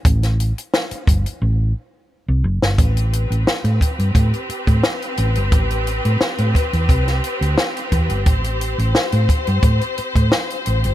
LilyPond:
<<
  \new Staff \with { instrumentName = "String section" } { \time 4/4 \key a \minor \tempo 4 = 88 << { r1 | b'1~ | b'1 | c''1 | } \\ { r1 | <c' g'>1~ | <c' g'>1~ | <c' g'>1 | } >> }
  \new Staff \with { instrumentName = "Fingered electric bass" } { \clef bass \time 4/4 \key a \minor a,,8. r8. g,,16 r16 a,,8 r8. c,16 fis,,16 g,,16 | a,,8. a,,16 r16 a,16 r16 g,16 a,16 r8 a,16 r8 a,,16 g,,16 | a,,8. a,16 r16 a,16 r16 e,16 c,8 r16 d,16 r8 e,16 g,,16 | a,,8. a,,16 r16 a,16 r16 g,16 a,16 r8 a,16 r8 a,,16 g,,16 | }
  \new DrumStaff \with { instrumentName = "Drums" } \drummode { \time 4/4 <hh bd>16 <hh sn>16 hh16 hh16 sn16 hh16 <hh bd>16 hh16 r4 r8. sn16 | <hh bd>16 hh16 hh16 hh16 sn16 hh16 <hh bd>16 hh16 <hh bd>16 hh16 hh16 <hh bd>16 sn16 hh16 hh16 hh16 | <hh bd>16 hh16 hh16 hh16 sn16 hh16 <hh bd>16 hh16 <hh bd>16 <hh sn>16 hh16 hh16 sn16 hh16 <hh bd>16 hh16 | <hh bd>16 hh16 hh16 hh16 sn16 hh16 <hh bd>16 hh16 <hh bd>16 hh16 hh16 <hh bd>16 sn16 hh16 hh16 hh16 | }
>>